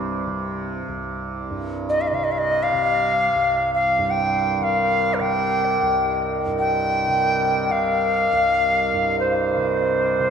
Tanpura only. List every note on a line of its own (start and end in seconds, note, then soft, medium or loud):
0.00 0.88 C2 medium
0.00 1.50 G2 soft
0.00 0.26 C3 soft
0.26 2.12 C3 medium
0.88 3.35 C2 medium
1.50 3.98 G2 soft
2.12 2.72 C3 medium
2.72 4.60 C3 soft
3.35 5.82 C2 medium
3.98 6.46 G2 soft
4.60 5.20 C3 soft
5.20 7.08 C3 medium
5.82 8.32 C2 medium
6.46 8.93 G2 soft
7.08 7.70 C3 soft
7.70 9.56 C3 soft
8.32 10.30 C2 soft
8.94 10.30 G2 soft
9.56 10.19 C3 medium
10.19 10.30 C3 medium